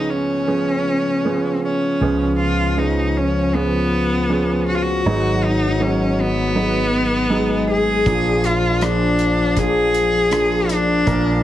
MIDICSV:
0, 0, Header, 1, 6, 480
1, 0, Start_track
1, 0, Tempo, 762389
1, 1262, Time_signature, 4, 2, 24, 8
1, 3178, Tempo, 753769
1, 7243, End_track
2, 0, Start_track
2, 0, Title_t, "Cello"
2, 0, Program_c, 0, 42
2, 0, Note_on_c, 0, 63, 69
2, 65, Note_on_c, 0, 61, 68
2, 74, Note_off_c, 0, 63, 0
2, 1026, Note_off_c, 0, 61, 0
2, 1036, Note_on_c, 0, 61, 63
2, 1484, Note_off_c, 0, 61, 0
2, 1509, Note_on_c, 0, 65, 66
2, 1751, Note_on_c, 0, 63, 58
2, 1761, Note_off_c, 0, 65, 0
2, 1994, Note_on_c, 0, 61, 65
2, 2003, Note_off_c, 0, 63, 0
2, 2232, Note_on_c, 0, 59, 79
2, 2242, Note_off_c, 0, 61, 0
2, 2942, Note_off_c, 0, 59, 0
2, 2945, Note_on_c, 0, 66, 72
2, 2989, Note_on_c, 0, 65, 65
2, 2998, Note_off_c, 0, 66, 0
2, 3032, Note_on_c, 0, 66, 74
2, 3042, Note_off_c, 0, 65, 0
2, 3433, Note_on_c, 0, 63, 76
2, 3442, Note_off_c, 0, 66, 0
2, 3672, Note_on_c, 0, 61, 69
2, 3681, Note_off_c, 0, 63, 0
2, 3915, Note_on_c, 0, 59, 89
2, 3924, Note_off_c, 0, 61, 0
2, 4867, Note_off_c, 0, 59, 0
2, 4869, Note_on_c, 0, 68, 93
2, 5351, Note_on_c, 0, 65, 81
2, 5361, Note_off_c, 0, 68, 0
2, 5584, Note_on_c, 0, 62, 83
2, 5594, Note_off_c, 0, 65, 0
2, 6066, Note_on_c, 0, 68, 99
2, 6075, Note_off_c, 0, 62, 0
2, 6791, Note_on_c, 0, 62, 92
2, 6801, Note_off_c, 0, 68, 0
2, 7243, Note_off_c, 0, 62, 0
2, 7243, End_track
3, 0, Start_track
3, 0, Title_t, "Felt piano"
3, 0, Program_c, 1, 0
3, 0, Control_c, 1, 64, 127
3, 0, Note_on_c, 1, 37, 51
3, 0, Note_on_c, 1, 49, 50
3, 0, Note_on_c, 1, 53, 53
3, 0, Note_on_c, 1, 59, 46
3, 0, Note_on_c, 1, 61, 48
3, 0, Note_on_c, 1, 68, 59
3, 268, Note_off_c, 1, 61, 0
3, 269, Note_off_c, 1, 53, 0
3, 269, Note_off_c, 1, 59, 0
3, 269, Note_off_c, 1, 68, 0
3, 300, Note_on_c, 1, 53, 51
3, 300, Note_on_c, 1, 59, 51
3, 300, Note_on_c, 1, 68, 58
3, 303, Note_on_c, 1, 61, 47
3, 749, Note_off_c, 1, 53, 0
3, 749, Note_off_c, 1, 59, 0
3, 749, Note_off_c, 1, 68, 0
3, 751, Note_off_c, 1, 61, 0
3, 786, Note_on_c, 1, 59, 61
3, 790, Note_on_c, 1, 53, 61
3, 791, Note_on_c, 1, 61, 52
3, 791, Note_on_c, 1, 68, 68
3, 1233, Note_off_c, 1, 59, 0
3, 1234, Note_off_c, 1, 53, 0
3, 1235, Note_off_c, 1, 61, 0
3, 1235, Note_off_c, 1, 68, 0
3, 1240, Note_off_c, 1, 49, 0
3, 1241, Note_off_c, 1, 37, 0
3, 1267, Note_on_c, 1, 53, 72
3, 1267, Note_on_c, 1, 61, 66
3, 1268, Note_on_c, 1, 49, 49
3, 1270, Control_c, 1, 64, 0
3, 1270, Note_on_c, 1, 37, 47
3, 1270, Note_on_c, 1, 59, 67
3, 1273, Note_on_c, 1, 68, 79
3, 1370, Control_c, 1, 64, 127
3, 1712, Note_off_c, 1, 61, 0
3, 1713, Note_off_c, 1, 53, 0
3, 1714, Note_off_c, 1, 59, 0
3, 1715, Note_off_c, 1, 68, 0
3, 1744, Note_on_c, 1, 53, 49
3, 1744, Note_on_c, 1, 59, 47
3, 1746, Note_on_c, 1, 61, 46
3, 1746, Note_on_c, 1, 68, 59
3, 2191, Note_off_c, 1, 53, 0
3, 2191, Note_off_c, 1, 59, 0
3, 2192, Note_off_c, 1, 61, 0
3, 2192, Note_off_c, 1, 68, 0
3, 2231, Note_on_c, 1, 53, 57
3, 2233, Note_on_c, 1, 59, 48
3, 2233, Note_on_c, 1, 61, 48
3, 2235, Note_on_c, 1, 68, 55
3, 2673, Note_off_c, 1, 53, 0
3, 2674, Note_off_c, 1, 59, 0
3, 2674, Note_off_c, 1, 61, 0
3, 2675, Note_off_c, 1, 68, 0
3, 2704, Note_on_c, 1, 53, 56
3, 2707, Note_on_c, 1, 59, 57
3, 2709, Note_on_c, 1, 68, 64
3, 2710, Note_on_c, 1, 61, 54
3, 3148, Note_off_c, 1, 53, 0
3, 3149, Note_off_c, 1, 59, 0
3, 3150, Note_off_c, 1, 68, 0
3, 3151, Note_off_c, 1, 61, 0
3, 3156, Note_off_c, 1, 49, 0
3, 3157, Note_off_c, 1, 37, 0
3, 3187, Control_c, 1, 64, 0
3, 3187, Note_on_c, 1, 63, 74
3, 3188, Note_on_c, 1, 68, 88
3, 3189, Note_on_c, 1, 44, 48
3, 3189, Note_on_c, 1, 54, 73
3, 3189, Note_on_c, 1, 59, 70
3, 3190, Note_on_c, 1, 32, 51
3, 3284, Control_c, 1, 64, 127
3, 3632, Note_off_c, 1, 63, 0
3, 3633, Note_off_c, 1, 54, 0
3, 3633, Note_off_c, 1, 59, 0
3, 3633, Note_off_c, 1, 68, 0
3, 3659, Note_on_c, 1, 54, 60
3, 3659, Note_on_c, 1, 59, 53
3, 3660, Note_on_c, 1, 63, 50
3, 3663, Note_on_c, 1, 68, 59
3, 4107, Note_off_c, 1, 54, 0
3, 4108, Note_off_c, 1, 59, 0
3, 4108, Note_off_c, 1, 63, 0
3, 4109, Note_off_c, 1, 68, 0
3, 4137, Note_on_c, 1, 63, 53
3, 4138, Note_on_c, 1, 54, 56
3, 4139, Note_on_c, 1, 59, 54
3, 4142, Note_on_c, 1, 68, 60
3, 4586, Note_off_c, 1, 54, 0
3, 4586, Note_off_c, 1, 63, 0
3, 4587, Note_off_c, 1, 59, 0
3, 4588, Note_off_c, 1, 68, 0
3, 4612, Note_on_c, 1, 54, 74
3, 4615, Note_on_c, 1, 59, 65
3, 4615, Note_on_c, 1, 68, 79
3, 4616, Note_on_c, 1, 63, 65
3, 5063, Note_off_c, 1, 54, 0
3, 5064, Note_off_c, 1, 59, 0
3, 5064, Note_off_c, 1, 68, 0
3, 5065, Note_off_c, 1, 63, 0
3, 5079, Note_off_c, 1, 32, 0
3, 5079, Note_off_c, 1, 44, 0
3, 5099, Note_on_c, 1, 34, 55
3, 5099, Note_on_c, 1, 53, 86
3, 5101, Note_on_c, 1, 46, 53
3, 5101, Note_on_c, 1, 68, 93
3, 5102, Note_on_c, 1, 58, 78
3, 5102, Note_on_c, 1, 62, 71
3, 5107, Control_c, 1, 64, 0
3, 5213, Control_c, 1, 64, 127
3, 5546, Note_off_c, 1, 53, 0
3, 5547, Note_off_c, 1, 68, 0
3, 5548, Note_off_c, 1, 58, 0
3, 5548, Note_off_c, 1, 62, 0
3, 5574, Note_on_c, 1, 53, 59
3, 5578, Note_on_c, 1, 62, 51
3, 5578, Note_on_c, 1, 68, 61
3, 5579, Note_on_c, 1, 58, 58
3, 6024, Note_off_c, 1, 53, 0
3, 6025, Note_off_c, 1, 68, 0
3, 6026, Note_off_c, 1, 58, 0
3, 6026, Note_off_c, 1, 62, 0
3, 6054, Note_on_c, 1, 53, 61
3, 6054, Note_on_c, 1, 68, 69
3, 6056, Note_on_c, 1, 58, 54
3, 6056, Note_on_c, 1, 62, 56
3, 6502, Note_off_c, 1, 53, 0
3, 6503, Note_off_c, 1, 62, 0
3, 6503, Note_off_c, 1, 68, 0
3, 6504, Note_off_c, 1, 58, 0
3, 6528, Note_on_c, 1, 53, 62
3, 6529, Note_on_c, 1, 58, 56
3, 6532, Note_on_c, 1, 62, 59
3, 6533, Note_on_c, 1, 68, 71
3, 6980, Note_off_c, 1, 53, 0
3, 6980, Note_off_c, 1, 58, 0
3, 6981, Note_off_c, 1, 62, 0
3, 6982, Note_off_c, 1, 68, 0
3, 6991, Note_off_c, 1, 34, 0
3, 6991, Note_off_c, 1, 46, 0
3, 7011, Note_on_c, 1, 53, 82
3, 7011, Note_on_c, 1, 62, 82
3, 7012, Note_on_c, 1, 34, 62
3, 7013, Note_on_c, 1, 58, 80
3, 7013, Note_on_c, 1, 70, 97
3, 7014, Note_on_c, 1, 46, 55
3, 7243, Note_off_c, 1, 34, 0
3, 7243, Note_off_c, 1, 46, 0
3, 7243, Note_off_c, 1, 53, 0
3, 7243, Note_off_c, 1, 58, 0
3, 7243, Note_off_c, 1, 62, 0
3, 7243, Note_off_c, 1, 70, 0
3, 7243, End_track
4, 0, Start_track
4, 0, Title_t, "French horn"
4, 0, Program_c, 2, 60
4, 1266, Note_on_c, 2, 53, 64
4, 3175, Note_on_c, 2, 54, 75
4, 3185, Note_off_c, 2, 53, 0
4, 4447, Note_off_c, 2, 54, 0
4, 4615, Note_on_c, 2, 56, 75
4, 5101, Note_on_c, 2, 53, 76
4, 5111, Note_off_c, 2, 56, 0
4, 7243, Note_off_c, 2, 53, 0
4, 7243, End_track
5, 0, Start_track
5, 0, Title_t, "Fretless electric bass"
5, 0, Program_c, 3, 35
5, 1265, Note_on_c, 3, 37, 60
5, 3154, Note_off_c, 3, 37, 0
5, 3183, Note_on_c, 3, 32, 64
5, 5076, Note_off_c, 3, 32, 0
5, 5097, Note_on_c, 3, 34, 70
5, 6990, Note_off_c, 3, 34, 0
5, 7012, Note_on_c, 3, 34, 72
5, 7243, Note_off_c, 3, 34, 0
5, 7243, End_track
6, 0, Start_track
6, 0, Title_t, "Drums"
6, 5097, Note_on_c, 9, 36, 78
6, 5098, Note_on_c, 9, 42, 53
6, 5161, Note_off_c, 9, 36, 0
6, 5162, Note_off_c, 9, 42, 0
6, 5337, Note_on_c, 9, 42, 42
6, 5401, Note_off_c, 9, 42, 0
6, 5575, Note_on_c, 9, 42, 55
6, 5583, Note_on_c, 9, 37, 76
6, 5639, Note_off_c, 9, 42, 0
6, 5647, Note_off_c, 9, 37, 0
6, 5814, Note_on_c, 9, 42, 41
6, 5878, Note_off_c, 9, 42, 0
6, 6055, Note_on_c, 9, 36, 63
6, 6056, Note_on_c, 9, 42, 61
6, 6119, Note_off_c, 9, 36, 0
6, 6119, Note_off_c, 9, 42, 0
6, 6296, Note_on_c, 9, 42, 44
6, 6360, Note_off_c, 9, 42, 0
6, 6531, Note_on_c, 9, 42, 60
6, 6539, Note_on_c, 9, 37, 86
6, 6595, Note_off_c, 9, 42, 0
6, 6603, Note_off_c, 9, 37, 0
6, 6773, Note_on_c, 9, 42, 47
6, 6837, Note_off_c, 9, 42, 0
6, 7012, Note_on_c, 9, 36, 79
6, 7013, Note_on_c, 9, 42, 57
6, 7076, Note_off_c, 9, 36, 0
6, 7076, Note_off_c, 9, 42, 0
6, 7243, End_track
0, 0, End_of_file